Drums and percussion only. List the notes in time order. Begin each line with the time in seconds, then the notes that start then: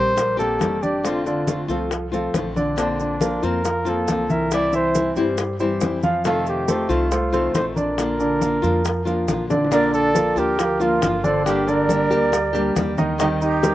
0.18 high bongo, high conga, maracas
0.40 high conga, maracas
0.61 high bongo, low bongo, high conga, maracas
0.83 high conga, maracas
1.05 high bongo, high conga, maracas
1.26 high bongo, high conga, maracas
1.47 high bongo, high conga, maracas
1.69 high bongo, high conga, maracas
1.91 high bongo, high conga, maracas
2.13 high conga, maracas
2.34 high bongo, low bongo, high conga, maracas
2.56 high bongo, high conga, maracas
2.78 high bongo, high conga, maracas
3.00 high conga, maracas
3.21 high bongo, high conga, maracas
3.43 high conga, maracas
3.65 high bongo, high conga, maracas
3.86 high conga, maracas
4.08 high bongo, low bongo, high conga, maracas
4.30 high conga, maracas
4.51 high bongo, high conga, maracas
4.73 high bongo, high conga, maracas
4.95 high bongo, high conga, maracas
5.16 high bongo, high conga, maracas
5.38 high bongo, high conga, maracas
5.60 high conga, maracas
5.81 high bongo, low bongo, high conga, maracas
6.03 high bongo, high conga, maracas
6.25 high bongo, high conga, maracas
6.47 high conga, maracas
6.68 high bongo, high conga, maracas
6.90 high conga, maracas
7.11 high bongo, high conga, maracas
7.33 high conga, maracas
7.55 high bongo, low bongo, high conga, maracas
7.76 high conga, maracas
7.97 high bongo, high conga, maracas
8.20 high bongo, high conga, maracas
8.41 high bongo, high conga, maracas
8.64 high bongo, high conga, maracas
8.85 high bongo, high conga, maracas
9.06 high conga, maracas
9.28 high bongo, low bongo, high conga, maracas
9.50 high bongo, high conga, maracas
9.65 low bongo
9.72 high bongo, high conga, maracas
9.94 high conga, maracas
10.15 high bongo, high conga, maracas
10.37 high conga, maracas
10.59 high bongo, high conga, maracas
10.80 high conga, maracas
11.02 high bongo, low bongo, high conga, maracas
11.24 high conga, maracas
11.46 high bongo, high conga, maracas
11.67 high bongo, high conga, maracas
11.89 high bongo, high conga, maracas
12.11 high bongo, high conga, maracas
12.33 high bongo, high conga, maracas
12.55 high conga, maracas
12.76 high bongo, low bongo, high conga, maracas
12.98 high bongo, high conga, maracas
13.20 high bongo, maracas
13.42 high conga, maracas
13.63 high bongo, high conga, maracas